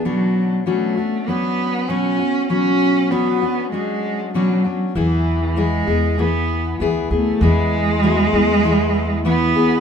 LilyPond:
<<
  \new Staff \with { instrumentName = "Vibraphone" } { \time 4/4 \key b \dorian \tempo 4 = 98 r1 | r1 | r1 | r4 fis'8 e'8 gis'8 e'8 e'4 | }
  \new Staff \with { instrumentName = "Steel-string acoustic guitar" } { \time 4/4 \key b \dorian <b, fis cis' d' fis'>4 <b, fis cis' d' fis'>8 <cis' d' fis'>8 <fis cis' d' fis'>4 <b, fis cis' fis'>8 <cis' fis'>8 | <b, fis cis' fis'>4 <b, fis cis' d' fis'>8 <cis' d' fis'>8 <fis cis' d' fis'>4 <b, fis cis' d' fis'>8 <cis' d' fis'>8 | <e b e' gis'>4 <e b e' gis'>8 <b e' gis'>8 <e b e' gis'>4 <e b e' gis'>8 <b e' gis'>8 | <e b e' gis'>4 <e b e' gis'>8 <b e' gis'>8 <e b e' gis'>4 <e b e' gis'>8 <b e' gis'>8 | }
  \new Staff \with { instrumentName = "Cello" } { \time 4/4 \key b \dorian fis4 a4 b4 cis'4 | cis'4 b4 gis4 fis8. r16 | e4 gis4 b4 r8 a8 | gis2. b4 | }
  \new Staff \with { instrumentName = "Upright bass" } { \clef bass \time 4/4 \key b \dorian r1 | r1 | e,4. e,4. d,8 d,8 | e,4. e,2 r8 | }
>>